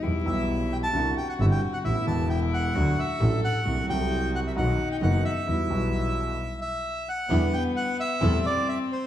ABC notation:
X:1
M:4/4
L:1/16
Q:1/4=132
K:Em
V:1 name="Bandoneon"
z2 e4 g a3 g f e g2 f | e2 a2 g2 f4 e4 f2- | f2 g4 f e f3 g f2 e2- | e8- e2 e4 f2- |
f2 g2 f2 e4 d2 e2 c2 |]
V:2 name="Cello"
E8 F8 | E4 E4 F4 A4 | F8 ^D8 | E8 z8 |
B,8 C8 |]
V:3 name="String section"
z16 | z16 | z16 | z16 |
[DEG]2 z6 [CEA]2 z6 |]
V:4 name="Upright piano" clef=bass
[E,,E,G,B,G]2 [B,,,B,,E,G,B,G]6 [C,,C,D,G,CE]2 z2 [G,,,G,,D,G,CE]2 z2 | [A,,,A,,E,A,B,A]2 [E,,,E,,E,A,B,A]6 [D,,D,F,A,DA]2 z2 [A,,,A,,F,A,DA]2 z2 | [C,,C,F,A,CA]2 [C,,C,F,A,CA]6 [B,,,B,,^D,F,B,F]2 z2 [F,,,F,,D,F,B,F]2 z2 | [E,,E,G,B,F]2 [B,,,B,,E,G,B,F]6 z8 |
[E,,D,E,G,B,E]2 z6 [E,,C,E,G,A,E]2 z6 |]
V:5 name="Double bass" clef=bass
E,,2 B,,,6 C,,2 z2 G,,,2 z2 | A,,,2 E,,,6 D,,2 z2 A,,,2 z2 | C,,2 C,,6 B,,,2 z2 F,,,2 z2 | E,,2 B,,,6 z8 |
E,,2 z6 E,,2 z6 |]